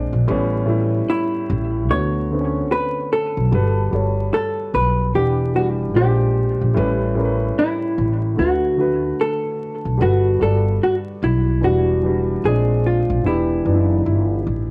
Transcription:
0.00 0.14 A#2 medium
0.00 0.15 G#3 medium
0.00 0.15 C4 medium
0.00 0.16 D4 loud
0.12 0.26 A#1 medium
0.27 1.00 A1 loud
0.27 0.62 A2 loud
0.27 0.62 G3 medium
0.27 0.63 B3 medium
0.27 0.63 C#4 loud
0.66 1.63 A2 medium
0.66 1.63 G3 medium
0.66 1.64 B3 medium
0.66 1.64 E4 medium
1.10 1.93 E4 medium
1.50 1.90 A1 medium
1.89 2.62 D2 medium
1.89 2.23 D3 medium
1.89 2.23 A3 medium
1.89 2.24 B3 medium
1.89 2.24 F#4 medium
1.89 2.67 C#5 medium
2.31 3.52 D3 medium
2.31 3.53 A3 medium
2.31 3.53 B3 medium
2.31 2.40 C4 medium
2.41 3.57 C#4 medium
2.72 3.12 B4 medium
3.13 4.33 A4 loud
3.37 3.50 B1 medium
3.51 3.88 G1 loud
3.51 3.86 G3 medium
3.51 3.86 F#4 medium
3.51 3.87 A4 medium
3.51 3.87 B4 loud
3.91 4.29 G1 medium
3.91 4.87 G3 medium
3.91 4.88 F#4 medium
3.91 4.89 A4 medium
3.91 4.89 C#5 medium
4.34 4.74 A4 medium
4.74 5.10 B1 medium
4.74 5.12 B4 medium
5.14 5.95 E1 medium
5.14 5.47 E3 medium
5.14 5.48 D4 medium
5.14 5.55 G4 medium
5.14 5.49 G4 medium
5.14 5.48 F#5 medium
5.55 5.95 E3 medium
5.55 5.97 G3 medium
5.55 5.96 D4 medium
5.55 5.66 F#4 medium
5.55 5.96 F#4 medium
5.94 6.54 A#1 loud
5.94 6.63 A#2 medium
5.94 6.64 G#3 medium
5.94 6.04 C#4 medium
5.94 7.54 G4 medium
5.94 6.65 C5 medium
6.03 6.68 D4 medium
6.61 6.75 A#1 medium
6.74 7.48 A1 loud
6.74 7.09 A2 medium
6.74 7.10 G3 medium
6.74 7.11 C#4 medium
6.74 7.11 B4 loud
7.15 8.12 A2 medium
7.15 8.12 G3 medium
7.15 8.13 C#4 medium
7.15 7.25 A#4 medium
7.25 8.17 B4 medium
7.59 8.35 E4 medium
7.98 8.34 A1 loud
8.36 9.11 D2 loud
8.36 8.70 D3 medium
8.36 8.71 A3 medium
8.36 8.71 F#4 medium
8.36 9.22 F#4 medium
8.36 8.72 B4 medium
8.77 9.99 D3 medium
8.77 10.00 A3 medium
8.77 9.97 F#4 medium
8.77 9.99 B4 medium
9.21 10.04 A4 medium
9.85 9.99 B1 medium
9.97 10.37 G1 loud
9.97 10.33 G3 medium
9.97 10.34 F#4 medium
9.97 10.34 A4 medium
9.97 10.35 B4 medium
10.02 10.43 F#4 medium
10.39 10.77 G1 medium
10.39 11.36 G3 medium
10.39 11.36 F#4 medium
10.39 11.37 A4 medium
10.39 10.83 A4 medium
10.39 11.37 D5 medium
10.83 10.94 F#4 medium
11.22 11.58 B1 medium
11.22 11.61 E4 medium
11.61 12.35 E1 medium
11.61 11.95 E3 medium
11.61 11.97 G3 medium
11.61 11.96 D4 medium
11.61 11.96 F#4 medium
11.61 12.47 F#4 medium
12.03 12.43 E3 medium
12.03 12.45 G3 medium
12.03 12.44 D4 medium
12.03 12.45 F#4 medium
12.44 13.02 A#1 medium
12.44 13.12 A#2 medium
12.44 13.13 G#3 medium
12.44 13.14 C4 medium
12.44 13.14 D4 medium
12.44 12.86 G#4 medium
12.86 13.26 F4 medium
13.10 13.25 A#1 medium
13.24 13.61 E1 loud
13.24 13.59 E3 medium
13.24 13.59 B3 medium
13.24 13.60 D4 medium
13.24 14.43 E4 medium
13.24 13.60 G4 medium
13.64 14.01 F#1 medium
13.64 14.61 E3 medium
13.64 14.61 B3 medium
13.64 14.62 D4 medium
13.64 13.75 D#4 medium
13.75 14.04 E4 medium
14.06 14.42 G1 medium
14.06 14.71 E4 medium
14.47 14.71 A1 medium

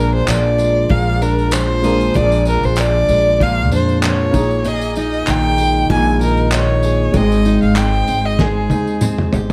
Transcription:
0.00 0.24 A#1 loud
0.00 0.88 A#2 medium
0.00 1.79 G#3 medium
0.00 1.80 A#3 medium
0.00 1.21 D4 medium
0.00 1.80 D4 medium
0.00 1.80 F4 medium
0.00 1.84 G#4 medium
0.00 0.15 A#4 loud
0.00 1.81 A#4 medium
0.15 0.30 C5 medium
0.27 0.86 A#1 medium
0.27 1.52 F3 medium
0.27 0.92 D5 loud
0.27 clap loud
0.27 tambourine medium
0.58 3.09 G#3 medium
0.58 tambourine medium
0.58 tambourine soft
0.89 2.11 A#1 loud
0.89 2.14 A#2 medium
0.89 1.23 F5 medium
0.89 kick loud
1.22 2.46 D4 medium
1.22 1.54 A#4 medium
1.22 tambourine soft
1.22 tambourine medium
1.39 tambourine soft
1.51 2.78 F3 medium
1.51 2.17 C5 loud
1.51 clap loud
1.51 tambourine medium
1.82 4.29 G#3 medium
1.82 4.29 A#3 medium
1.82 4.30 D4 medium
1.82 4.30 F4 medium
1.82 2.16 G#4 medium
1.82 4.30 A#4 medium
1.82 tambourine medium
2.01 tambourine soft
2.14 2.60 A#1 loud
2.14 3.40 A#2 medium
2.14 4.66 G#4 medium
2.14 2.47 D5 loud
2.14 kick loud
2.14 tambourine medium
2.32 tambourine soft
2.45 3.71 D4 medium
2.45 tambourine soft
2.47 2.66 A#4 medium
2.47 tambourine medium
2.63 3.05 A#1 loud
2.63 2.81 C5 medium
2.63 tambourine soft
2.76 4.02 F3 medium
2.76 clap medium
2.76 tambourine medium
2.80 3.44 D5 loud
3.08 3.71 A#1 medium
3.08 4.68 G#3 medium
3.08 tambourine soft
3.08 tambourine medium
3.40 4.32 A#2 medium
3.40 3.73 F5 medium
3.40 kick loud
3.71 4.30 F2 medium
3.71 4.41 D4 medium
3.71 4.02 C5 medium
3.71 tambourine medium
3.71 tambourine soft
3.89 tambourine soft
4.02 4.41 F3 medium
4.02 4.69 C#5 loud
4.02 clap loud
4.02 tambourine medium
4.31 5.24 A#1 loud
4.31 4.64 A#2 medium
4.31 6.78 A#3 medium
4.31 6.79 D#4 medium
4.31 kick loud
4.31 tambourine medium
4.35 6.80 G#4 medium
4.51 tambourine soft
4.64 5.89 A#2 medium
4.64 6.84 G#4 medium
4.64 4.98 D#5 medium
4.64 tambourine medium
4.81 tambourine medium
4.96 6.22 D#4 medium
4.96 5.31 D#5 medium
4.96 tambourine soft
4.96 tambourine medium
5.13 tambourine soft
5.27 5.86 A#1 loud
5.27 6.52 D#3 medium
5.27 5.91 G5 loud
5.27 clap loud
5.27 tambourine medium
5.58 7.14 G#3 medium
5.58 tambourine soft
5.58 tambourine medium
5.90 7.11 A#1 loud
5.90 7.22 A#2 medium
5.90 6.20 G#5 medium
5.90 kick loud
6.21 7.45 D#4 medium
6.21 6.51 A#4 medium
6.21 tambourine soft
6.21 tambourine medium
6.37 tambourine soft
6.51 7.13 D#3 medium
6.51 7.18 C#5 medium
6.51 clap loud
6.51 tambourine medium
6.83 9.33 G#4 medium
6.83 tambourine medium
6.83 tambourine soft
7.12 7.59 G#1 loud
7.12 9.53 G#3 medium
7.12 8.39 G#3 medium
7.12 9.53 C4 medium
7.12 9.53 D#4 medium
7.12 9.53 G5 medium
7.12 kick loud
7.12 tambourine medium
7.16 9.53 C5 medium
7.16 7.63 D#5 loud
7.32 tambourine soft
7.45 8.70 D#4 medium
7.45 tambourine medium
7.45 tambourine soft
7.62 8.05 G#1 medium
7.62 7.79 F5 medium
7.62 tambourine soft
7.76 8.08 C4 medium
7.76 8.27 G5 loud
7.76 clap loud
7.76 tambourine medium
8.07 8.67 G#1 medium
8.07 9.02 C4 medium
8.07 tambourine medium
8.07 tambourine soft
8.25 8.43 D#5 medium
8.39 9.53 G#3 medium
8.39 9.34 G#4 medium
8.39 kick loud
8.39 snare medium
8.70 9.29 D#2 medium
8.70 9.53 D#4 medium
8.70 high tom medium
8.70 tambourine medium
8.87 tambourine soft
9.01 9.53 C4 medium
9.01 mid tom loud
9.01 tambourine medium
9.18 mid tom medium
9.33 9.53 G1 medium
9.33 9.53 G4 medium
9.33 floor tom loud
9.33 tambourine medium

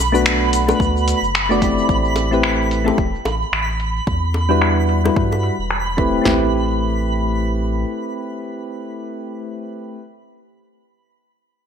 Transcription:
0.00 0.73 B1 loud
0.00 6.26 B5 medium
0.12 0.64 A3 medium
0.12 0.64 B3 medium
0.12 0.64 D4 medium
0.12 0.64 F#4 medium
0.12 0.65 B4 loud
0.12 shaker soft
0.26 finger snap loud
0.26 shaker soft
0.53 closed hi-hat medium
0.53 shaker medium
0.67 1.18 A3 medium
0.67 1.18 B3 medium
0.67 1.19 D4 medium
0.67 1.19 F#4 medium
0.67 1.19 B4 medium
0.67 high bongo medium
0.67 shaker soft
0.80 1.14 D2 loud
0.80 kick loud
0.80 shaker soft
0.97 shaker soft
1.08 closed hi-hat medium
1.08 shaker medium
1.22 1.82 F#1 medium
1.22 shaker soft
1.35 finger snap loud
1.35 shaker soft
1.49 1.58 A3 medium
1.49 1.59 B3 medium
1.49 1.59 D4 medium
1.49 1.59 F#4 medium
1.49 1.60 D5 loud
1.49 shaker soft
1.60 2.27 A3 medium
1.60 2.27 C4 medium
1.60 2.28 E4 medium
1.60 2.29 G4 medium
1.60 kick loud
1.60 closed hi-hat medium
1.60 shaker medium
1.65 2.29 D5 medium
1.78 shaker soft
1.89 2.91 A1 loud
1.89 kick loud
1.89 shaker soft
2.05 shaker soft
2.16 closed hi-hat medium
2.16 high bongo soft
2.16 shaker medium
2.31 2.82 A3 medium
2.31 2.82 C4 medium
2.31 2.83 E4 medium
2.31 2.83 G4 medium
2.31 2.83 B4 medium
2.31 shaker soft
2.43 finger snap medium
2.43 shaker soft
2.71 closed hi-hat medium
2.71 shaker medium
2.84 2.99 A3 medium
2.84 2.99 C4 medium
2.84 3.00 E4 medium
2.84 3.00 G4 medium
2.84 3.00 A4 medium
2.84 high bongo medium
2.84 shaker soft
2.98 3.17 E1 medium
2.98 kick loud
2.98 shaker soft
3.15 shaker soft
3.25 3.44 A1 medium
3.25 closed hi-hat medium
3.25 high bongo soft
3.25 shaker medium
3.42 shaker soft
3.52 4.00 A1 medium
3.52 finger snap medium
3.52 shaker soft
3.69 shaker soft
3.80 closed hi-hat medium
3.80 shaker medium
3.96 shaker soft
4.07 5.10 E2 medium
4.07 kick loud
4.07 shaker soft
4.23 shaker soft
4.34 closed hi-hat medium
4.34 high bongo soft
4.34 shaker medium
4.49 5.00 G3 medium
4.49 5.00 D4 medium
4.49 5.00 E4 medium
4.49 5.01 F#4 medium
4.49 5.01 B4 medium
4.49 shaker soft
4.62 finger snap medium
4.62 shaker soft
4.89 closed hi-hat medium
4.89 shaker medium
5.04 5.55 G3 medium
5.04 5.55 D4 medium
5.04 5.56 E4 medium
5.04 5.56 F#4 medium
5.04 5.56 B4 medium
5.04 high bongo medium
5.16 5.51 G2 medium
5.16 kick loud
5.32 high bongo soft
5.32 shaker soft
5.43 closed hi-hat medium
5.43 shaker medium
5.59 6.19 E1 medium
5.59 shaker soft
5.71 finger snap medium
5.97 6.20 A3 medium
5.97 6.22 C4 medium
5.97 6.24 E4 medium
5.97 6.26 G4 medium
5.97 6.28 B4 medium
5.97 kick loud
5.97 closed hi-hat medium
5.97 shaker medium
6.21 7.85 A1 medium
6.21 9.96 A3 medium
6.21 9.98 C4 medium
6.21 10.00 E4 medium
6.21 snare medium
6.21 floor tom medium
6.27 10.02 G4 medium
6.27 10.04 B4 medium

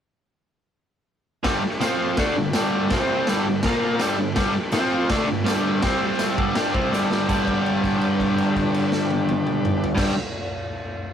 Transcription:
1.44 1.62 G2 medium
1.44 1.62 D3 loud
1.44 1.63 G3 loud
1.44 1.82 D4 medium
1.44 1.81 G4 medium
1.44 1.81 B4 medium
1.44 kick medium
1.44 snare loud
1.44 crash medium
1.63 muted overdriven electric guitar stroke medium
1.80 2.17 F3 loud
1.80 2.17 C4 medium
1.80 2.17 F4 medium
1.80 2.17 F4 loud
1.80 2.17 C5 medium
1.80 snare loud
1.80 tambourine medium
1.80 crash medium
2.15 2.35 D3 medium
2.15 2.35 A3 medium
2.15 2.88 D4 medium
2.15 2.36 D4 loud
2.15 2.87 G4 medium
2.15 2.88 B4 medium
2.15 kick loud
2.15 snare loud
2.15 crash medium
2.36 2.51 G2 medium
2.36 2.51 D3 medium
2.53 2.90 G2 loud
2.53 2.93 D3 medium
2.53 2.91 G3 loud
2.53 snare loud
2.53 tambourine medium
2.53 crash medium
2.88 3.26 C4 medium
2.88 3.25 G4 medium
2.88 3.27 C5 medium
2.88 kick loud
2.88 snare loud
2.88 crash medium
2.93 3.27 C3 medium
2.93 3.28 G3 loud
2.93 3.28 C4 loud
3.25 3.45 G2 loud
3.25 3.46 D3 loud
3.25 3.62 D4 medium
3.25 3.63 G4 medium
3.25 3.63 B4 medium
3.25 snare loud
3.25 tambourine medium
3.25 crash medium
3.29 3.46 G3 loud
3.48 3.61 G2 medium
3.48 3.61 D3 medium
3.63 4.00 A#2 medium
3.63 4.01 F3 medium
3.63 4.00 A#3 medium
3.63 4.01 A#3 loud
3.63 4.00 F4 medium
3.63 4.00 A#4 medium
3.63 kick loud
3.63 snare loud
3.63 crash medium
3.99 4.17 G2 medium
3.99 4.17 D3 loud
3.99 4.18 G3 loud
3.99 4.71 D4 medium
3.99 4.71 G4 medium
3.99 4.72 B4 medium
3.99 snare loud
3.99 tambourine medium
3.99 crash medium
4.18 4.33 G2 medium
4.18 4.33 D3 medium
4.36 4.53 G2 medium
4.36 4.54 D3 loud
4.36 4.54 G3 loud
4.36 kick loud
4.36 snare loud
4.36 crash medium
4.55 muted overdriven electric guitar stroke medium
4.72 5.09 F3 loud
4.72 5.09 C4 medium
4.72 5.09 C4 loud
4.72 5.10 F4 medium
4.72 5.10 F4 loud
4.72 5.10 C5 medium
4.72 snare loud
4.72 tambourine medium
4.72 crash medium
5.10 5.26 D3 medium
5.10 5.28 A3 loud
5.10 5.28 D4 loud
5.10 5.82 D4 medium
5.10 5.82 G4 medium
5.10 5.83 B4 medium
5.10 kick loud
5.10 snare loud
5.10 crash medium
5.27 5.42 G2 medium
5.27 5.42 D3 medium
5.44 5.81 G2 medium
5.44 5.82 D3 loud
5.44 5.81 G3 loud
5.44 snare loud
5.44 tambourine loud
5.44 crash medium
5.82 6.37 C3 loud
5.82 6.37 G3 loud
5.82 6.38 C4 medium
5.82 6.38 C4 loud
5.82 6.35 G4 medium
5.82 6.38 C5 medium
5.82 kick loud
5.82 snare loud
5.82 crash medium
6.19 snare loud
6.19 tambourine loud
6.19 crash medium
6.36 6.55 G2 loud
6.36 6.56 D3 medium
6.36 6.54 G3 loud
6.36 7.26 D4 medium
6.36 7.27 G4 medium
6.36 7.27 B4 medium
6.36 kick loud
6.55 6.73 G3 medium
6.55 6.73 D4 medium
6.55 6.74 G4 loud
6.55 snare loud
6.55 crash medium
6.73 6.91 C3 medium
6.73 6.91 G3 loud
6.73 6.92 C4 loud
6.73 kick loud
6.91 7.26 G2 loud
6.91 7.28 D3 loud
6.91 7.28 G3 loud
6.91 snare medium
6.91 tambourine loud
7.11 snare medium
7.27 9.94 G2 loud
7.27 9.97 D3 loud
7.27 9.98 G3 loud
7.27 9.89 D4 medium
7.27 9.89 G4 medium
7.27 9.89 B4 loud
7.27 kick loud
7.27 crash medium
7.27 tambourine medium
7.47 kick medium
7.47 crash soft
7.66 crash soft
7.84 kick medium
7.84 crash medium
8.01 crash soft
8.20 kick medium
8.20 crash medium
8.38 crash soft
8.56 kick medium
8.56 crash soft
8.74 crash medium
8.92 snare medium
9.10 high tom medium
9.29 high tom loud
9.47 mid tom medium
9.65 mid tom loud
9.84 floor tom loud
9.94 10.12 G2 loud
9.94 10.13 D3 loud
9.94 10.12 D4 medium
9.94 10.12 G4 medium
9.94 10.12 B4 medium
9.94 kick loud
9.94 snare medium
9.94 crash loud
9.98 10.14 G3 loud

